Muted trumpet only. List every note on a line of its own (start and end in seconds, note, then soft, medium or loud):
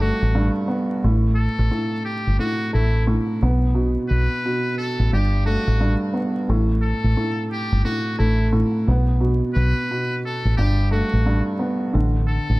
0.01 0.53 F#4 medium
1.35 2.00 A4 medium
2.05 2.36 G4 medium
2.40 2.70 F#4 medium
2.74 3.04 E4 medium
4.09 4.73 B4 medium
4.78 5.09 A4 medium
5.13 5.43 G4 medium
5.46 5.98 F#4 medium
6.82 7.46 A4 medium
7.51 7.82 G4 medium
7.85 8.15 F#4 medium
8.19 8.49 E4 medium
9.54 10.19 B4 medium
10.26 10.55 A4 medium
10.57 10.88 G4 medium
10.92 11.43 F#4 medium
12.28 12.60 A4 medium